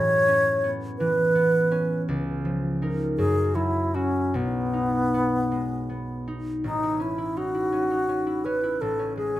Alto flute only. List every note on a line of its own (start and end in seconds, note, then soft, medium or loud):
0.00 0.70 C#5 medium
0.98 2.02 B4 medium
3.17 3.57 G#4 medium
3.55 3.96 E4 medium
3.95 4.37 C#4 medium
4.36 6.28 B3 medium
6.65 7.03 D#4 medium
7.02 7.39 E4 medium
7.37 8.46 F#4 medium
8.45 8.83 B4 medium
8.81 9.16 A4 medium
9.17 9.40 G#4 medium